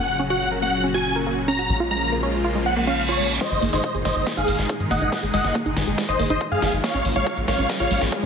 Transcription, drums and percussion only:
3.41 kick loud
3.41 snare soft
3.41 closed hi-hat medium
3.52 closed hi-hat soft
3.62 open hi-hat loud
3.73 snare soft
3.73 closed hi-hat medium
3.84 kick loud
3.84 closed hi-hat medium
3.95 closed hi-hat soft
4.05 snare soft
4.05 open hi-hat loud
4.16 closed hi-hat medium
4.27 kick loud
4.27 snare soft
4.27 closed hi-hat medium
4.37 closed hi-hat soft
4.48 open hi-hat loud
4.59 snare soft
4.59 closed hi-hat medium
4.69 kick loud
4.69 closed hi-hat medium
4.80 closed hi-hat soft
4.91 open hi-hat loud
5.02 closed hi-hat soft
5.12 kick loud
5.12 snare soft
5.12 closed hi-hat soft
5.23 closed hi-hat soft
5.34 open hi-hat loud
5.44 snare soft
5.55 kick loud
5.55 closed hi-hat medium
5.66 closed hi-hat soft
5.77 snare medium
5.77 open hi-hat loud
5.87 closed hi-hat soft
5.98 kick loud
5.98 snare medium
5.98 closed hi-hat soft
6.09 closed hi-hat soft
6.20 open hi-hat loud
6.30 closed hi-hat soft
6.41 kick loud
6.41 closed hi-hat medium
6.52 closed hi-hat soft
6.62 snare medium
6.62 open hi-hat loud
6.73 closed hi-hat soft
6.84 kick loud
6.84 snare medium
6.84 closed hi-hat soft
6.94 closed hi-hat soft
7.05 open hi-hat loud
7.27 kick loud
7.27 closed hi-hat medium
7.37 closed hi-hat soft
7.48 snare medium
7.48 open hi-hat loud
7.59 closed hi-hat medium
7.69 kick loud
7.69 snare medium
7.69 closed hi-hat soft
7.80 closed hi-hat soft
7.91 open hi-hat loud
8.02 snare medium
8.12 kick loud
8.12 closed hi-hat soft

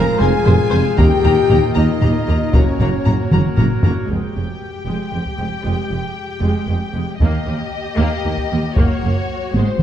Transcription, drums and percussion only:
0.47 taiko low-mid medium
0.98 taiko medium
1.24 taiko low-mid soft
1.50 taiko low-mid soft
2.02 taiko low-mid soft
2.53 taiko medium
2.79 taiko low-mid soft
3.07 taiko low-mid soft
3.31 taiko mid medium
3.57 taiko low-mid medium
3.83 taiko low medium
4.10 taiko soft
5.25 taiko soft
7.20 taiko soft
8.37 taiko soft
8.76 taiko medium
9.54 taiko high medium
9.79 taiko mid medium

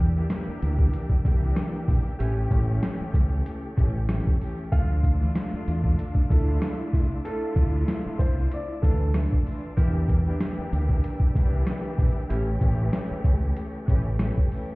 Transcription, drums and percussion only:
0.16 shaker medium
0.30 cross-stick medium
0.30 snare loud
0.30 closed hi-hat loud
0.30 shaker medium
0.62 closed hi-hat medium
0.62 shaker soft
0.78 kick medium
0.78 shaker medium
0.93 closed hi-hat medium
0.93 shaker medium
1.09 kick loud
1.25 kick loud
1.25 closed hi-hat medium
1.25 shaker medium
1.42 shaker medium
1.56 cross-stick loud
1.56 snare loud
1.56 closed hi-hat loud
1.56 shaker medium
1.88 kick loud
1.88 open hi-hat soft
1.88 shaker medium
2.20 closed hi-hat loud
2.20 shaker medium
2.51 kick loud
2.51 closed hi-hat medium
2.51 shaker medium
2.69 shaker medium
2.83 cross-stick medium
2.83 snare loud
2.83 closed hi-hat loud
2.83 shaker medium
3.14 kick loud
3.14 closed hi-hat medium
3.14 shaker soft
3.31 shaker medium
3.46 closed hi-hat medium
3.46 shaker medium
3.78 kick loud
3.78 closed hi-hat medium
3.78 shaker medium
3.95 shaker medium
4.09 cross-stick loud
4.09 snare loud
4.09 closed hi-hat loud
4.09 shaker medium
4.27 kick loud
4.41 open hi-hat medium
4.41 shaker medium
4.58 shaker soft
4.72 kick loud
4.72 closed hi-hat loud
4.72 shaker medium
5.03 kick loud
5.03 closed hi-hat medium
5.03 shaker medium
5.21 shaker medium
5.35 cross-stick medium
5.35 snare loud
5.35 closed hi-hat loud
5.35 shaker medium
5.67 closed hi-hat medium
5.67 shaker soft
5.84 kick medium
5.84 shaker medium
5.99 closed hi-hat loud
5.99 shaker medium
6.15 kick loud
6.30 kick loud
6.30 closed hi-hat medium
6.30 shaker medium
6.48 shaker medium
6.62 cross-stick loud
6.62 snare loud
6.62 closed hi-hat loud
6.62 shaker medium
6.93 kick loud
6.93 open hi-hat soft
6.93 shaker medium
7.25 closed hi-hat loud
7.25 shaker medium
7.56 kick loud
7.56 closed hi-hat medium
7.56 shaker medium
7.74 shaker medium
7.88 cross-stick medium
7.88 snare loud
7.88 closed hi-hat loud
7.88 shaker medium
8.19 kick loud
8.19 closed hi-hat medium
8.19 shaker soft
8.36 shaker medium
8.51 closed hi-hat loud
8.51 shaker medium
8.83 kick loud
8.83 closed hi-hat medium
8.83 shaker medium
9.00 shaker medium
9.14 cross-stick loud
9.14 snare loud
9.14 closed hi-hat loud
9.14 shaker medium
9.33 kick loud
9.46 open hi-hat soft
9.46 shaker medium
9.77 kick loud
9.77 closed hi-hat loud
9.77 shaker medium
10.09 kick loud
10.09 closed hi-hat medium
10.09 shaker medium
10.27 shaker medium
10.40 cross-stick loud
10.40 snare loud
10.40 closed hi-hat loud
10.40 shaker medium
10.72 closed hi-hat medium
10.72 shaker medium
10.89 kick medium
10.89 shaker medium
11.04 closed hi-hat medium
11.04 shaker medium
11.20 kick loud
11.35 kick loud
11.35 closed hi-hat medium
11.35 shaker medium
11.53 shaker medium
11.66 cross-stick loud
11.66 snare loud
11.66 closed hi-hat loud
11.66 shaker medium
11.98 kick loud
11.98 open hi-hat soft
11.98 shaker medium
12.30 closed hi-hat loud
12.30 shaker medium
12.61 kick loud
12.61 closed hi-hat medium
12.61 shaker medium
12.79 shaker medium
12.93 cross-stick medium
12.93 snare loud
12.93 closed hi-hat loud
12.93 shaker medium
13.24 kick loud
13.24 closed hi-hat medium
13.24 shaker soft
13.41 shaker medium
13.56 closed hi-hat medium
13.56 shaker medium
13.88 kick loud
13.88 closed hi-hat medium
13.88 shaker medium
14.05 shaker medium
14.19 cross-stick loud
14.19 snare loud
14.19 closed hi-hat loud
14.19 shaker medium
14.38 kick loud
14.51 open hi-hat medium
14.51 shaker medium
14.69 shaker soft

